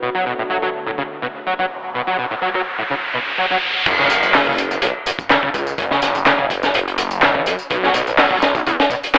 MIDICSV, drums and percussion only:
0, 0, Header, 1, 2, 480
1, 0, Start_track
1, 0, Key_signature, 3, "minor"
1, 0, Tempo, 480000
1, 26, Time_signature, 4, 2, 24, 8
1, 9181, End_track
2, 0, Start_track
2, 0, Title_t, "Drums"
2, 3861, Note_on_c, 9, 49, 88
2, 3862, Note_on_c, 9, 42, 79
2, 3864, Note_on_c, 9, 36, 112
2, 3864, Note_on_c, 9, 54, 35
2, 3961, Note_off_c, 9, 49, 0
2, 3962, Note_off_c, 9, 42, 0
2, 3964, Note_off_c, 9, 36, 0
2, 3964, Note_off_c, 9, 54, 0
2, 3993, Note_on_c, 9, 38, 40
2, 4093, Note_off_c, 9, 38, 0
2, 4099, Note_on_c, 9, 54, 77
2, 4107, Note_on_c, 9, 42, 65
2, 4199, Note_off_c, 9, 54, 0
2, 4207, Note_off_c, 9, 42, 0
2, 4229, Note_on_c, 9, 54, 44
2, 4329, Note_off_c, 9, 54, 0
2, 4342, Note_on_c, 9, 39, 110
2, 4342, Note_on_c, 9, 54, 33
2, 4348, Note_on_c, 9, 38, 112
2, 4348, Note_on_c, 9, 46, 77
2, 4442, Note_off_c, 9, 39, 0
2, 4442, Note_off_c, 9, 54, 0
2, 4448, Note_off_c, 9, 38, 0
2, 4448, Note_off_c, 9, 46, 0
2, 4473, Note_on_c, 9, 36, 92
2, 4573, Note_off_c, 9, 36, 0
2, 4583, Note_on_c, 9, 54, 77
2, 4584, Note_on_c, 9, 42, 75
2, 4683, Note_off_c, 9, 54, 0
2, 4684, Note_off_c, 9, 42, 0
2, 4710, Note_on_c, 9, 54, 43
2, 4810, Note_off_c, 9, 54, 0
2, 4819, Note_on_c, 9, 42, 78
2, 4825, Note_on_c, 9, 54, 33
2, 4919, Note_off_c, 9, 42, 0
2, 4925, Note_off_c, 9, 54, 0
2, 5063, Note_on_c, 9, 54, 78
2, 5069, Note_on_c, 9, 42, 69
2, 5163, Note_off_c, 9, 54, 0
2, 5169, Note_off_c, 9, 42, 0
2, 5187, Note_on_c, 9, 36, 102
2, 5191, Note_on_c, 9, 54, 46
2, 5287, Note_off_c, 9, 36, 0
2, 5291, Note_off_c, 9, 54, 0
2, 5304, Note_on_c, 9, 38, 112
2, 5304, Note_on_c, 9, 39, 100
2, 5304, Note_on_c, 9, 54, 32
2, 5308, Note_on_c, 9, 42, 91
2, 5404, Note_off_c, 9, 38, 0
2, 5404, Note_off_c, 9, 39, 0
2, 5404, Note_off_c, 9, 54, 0
2, 5408, Note_off_c, 9, 42, 0
2, 5430, Note_on_c, 9, 36, 99
2, 5530, Note_off_c, 9, 36, 0
2, 5542, Note_on_c, 9, 36, 88
2, 5542, Note_on_c, 9, 54, 75
2, 5544, Note_on_c, 9, 42, 72
2, 5642, Note_off_c, 9, 36, 0
2, 5642, Note_off_c, 9, 54, 0
2, 5644, Note_off_c, 9, 42, 0
2, 5668, Note_on_c, 9, 54, 45
2, 5768, Note_off_c, 9, 54, 0
2, 5781, Note_on_c, 9, 54, 35
2, 5782, Note_on_c, 9, 36, 102
2, 5785, Note_on_c, 9, 42, 93
2, 5881, Note_off_c, 9, 54, 0
2, 5882, Note_off_c, 9, 36, 0
2, 5885, Note_off_c, 9, 42, 0
2, 5910, Note_on_c, 9, 38, 51
2, 6010, Note_off_c, 9, 38, 0
2, 6019, Note_on_c, 9, 54, 77
2, 6026, Note_on_c, 9, 42, 74
2, 6027, Note_on_c, 9, 38, 34
2, 6119, Note_off_c, 9, 54, 0
2, 6126, Note_off_c, 9, 42, 0
2, 6127, Note_off_c, 9, 38, 0
2, 6148, Note_on_c, 9, 54, 46
2, 6248, Note_off_c, 9, 54, 0
2, 6262, Note_on_c, 9, 39, 108
2, 6262, Note_on_c, 9, 54, 36
2, 6264, Note_on_c, 9, 38, 117
2, 6264, Note_on_c, 9, 42, 94
2, 6361, Note_off_c, 9, 39, 0
2, 6361, Note_off_c, 9, 54, 0
2, 6364, Note_off_c, 9, 38, 0
2, 6364, Note_off_c, 9, 42, 0
2, 6390, Note_on_c, 9, 36, 89
2, 6490, Note_off_c, 9, 36, 0
2, 6501, Note_on_c, 9, 36, 102
2, 6503, Note_on_c, 9, 54, 77
2, 6509, Note_on_c, 9, 42, 70
2, 6601, Note_off_c, 9, 36, 0
2, 6603, Note_off_c, 9, 54, 0
2, 6609, Note_off_c, 9, 42, 0
2, 6629, Note_on_c, 9, 54, 44
2, 6632, Note_on_c, 9, 38, 49
2, 6729, Note_off_c, 9, 54, 0
2, 6732, Note_off_c, 9, 38, 0
2, 6741, Note_on_c, 9, 54, 34
2, 6750, Note_on_c, 9, 42, 96
2, 6841, Note_off_c, 9, 54, 0
2, 6850, Note_off_c, 9, 42, 0
2, 6877, Note_on_c, 9, 42, 43
2, 6977, Note_off_c, 9, 42, 0
2, 6980, Note_on_c, 9, 42, 68
2, 6980, Note_on_c, 9, 54, 83
2, 7080, Note_off_c, 9, 42, 0
2, 7080, Note_off_c, 9, 54, 0
2, 7108, Note_on_c, 9, 54, 45
2, 7208, Note_off_c, 9, 54, 0
2, 7221, Note_on_c, 9, 39, 107
2, 7221, Note_on_c, 9, 54, 33
2, 7228, Note_on_c, 9, 38, 105
2, 7232, Note_on_c, 9, 42, 92
2, 7321, Note_off_c, 9, 39, 0
2, 7321, Note_off_c, 9, 54, 0
2, 7328, Note_off_c, 9, 38, 0
2, 7332, Note_off_c, 9, 42, 0
2, 7351, Note_on_c, 9, 36, 102
2, 7451, Note_off_c, 9, 36, 0
2, 7461, Note_on_c, 9, 54, 78
2, 7470, Note_on_c, 9, 42, 77
2, 7561, Note_off_c, 9, 54, 0
2, 7570, Note_off_c, 9, 42, 0
2, 7587, Note_on_c, 9, 54, 48
2, 7687, Note_off_c, 9, 54, 0
2, 7703, Note_on_c, 9, 54, 34
2, 7707, Note_on_c, 9, 36, 108
2, 7710, Note_on_c, 9, 42, 93
2, 7803, Note_off_c, 9, 54, 0
2, 7807, Note_off_c, 9, 36, 0
2, 7810, Note_off_c, 9, 42, 0
2, 7834, Note_on_c, 9, 38, 45
2, 7934, Note_off_c, 9, 38, 0
2, 7939, Note_on_c, 9, 42, 74
2, 7942, Note_on_c, 9, 54, 76
2, 8039, Note_off_c, 9, 42, 0
2, 8042, Note_off_c, 9, 54, 0
2, 8070, Note_on_c, 9, 54, 44
2, 8170, Note_off_c, 9, 54, 0
2, 8182, Note_on_c, 9, 46, 85
2, 8183, Note_on_c, 9, 39, 112
2, 8183, Note_on_c, 9, 54, 35
2, 8184, Note_on_c, 9, 38, 116
2, 8282, Note_off_c, 9, 46, 0
2, 8283, Note_off_c, 9, 39, 0
2, 8283, Note_off_c, 9, 54, 0
2, 8284, Note_off_c, 9, 38, 0
2, 8308, Note_on_c, 9, 36, 94
2, 8408, Note_off_c, 9, 36, 0
2, 8422, Note_on_c, 9, 54, 81
2, 8426, Note_on_c, 9, 38, 100
2, 8428, Note_on_c, 9, 42, 82
2, 8522, Note_off_c, 9, 54, 0
2, 8526, Note_off_c, 9, 38, 0
2, 8528, Note_off_c, 9, 42, 0
2, 8550, Note_on_c, 9, 36, 93
2, 8552, Note_on_c, 9, 54, 41
2, 8650, Note_off_c, 9, 36, 0
2, 8652, Note_off_c, 9, 54, 0
2, 8665, Note_on_c, 9, 42, 61
2, 8667, Note_on_c, 9, 54, 31
2, 8765, Note_off_c, 9, 42, 0
2, 8767, Note_off_c, 9, 54, 0
2, 8798, Note_on_c, 9, 42, 72
2, 8799, Note_on_c, 9, 38, 100
2, 8898, Note_off_c, 9, 42, 0
2, 8899, Note_off_c, 9, 38, 0
2, 8899, Note_on_c, 9, 36, 85
2, 8905, Note_on_c, 9, 54, 76
2, 8999, Note_off_c, 9, 36, 0
2, 9005, Note_off_c, 9, 54, 0
2, 9034, Note_on_c, 9, 54, 43
2, 9040, Note_on_c, 9, 42, 62
2, 9134, Note_off_c, 9, 54, 0
2, 9140, Note_off_c, 9, 42, 0
2, 9142, Note_on_c, 9, 42, 91
2, 9144, Note_on_c, 9, 38, 116
2, 9147, Note_on_c, 9, 39, 109
2, 9147, Note_on_c, 9, 54, 31
2, 9181, Note_off_c, 9, 38, 0
2, 9181, Note_off_c, 9, 39, 0
2, 9181, Note_off_c, 9, 42, 0
2, 9181, Note_off_c, 9, 54, 0
2, 9181, End_track
0, 0, End_of_file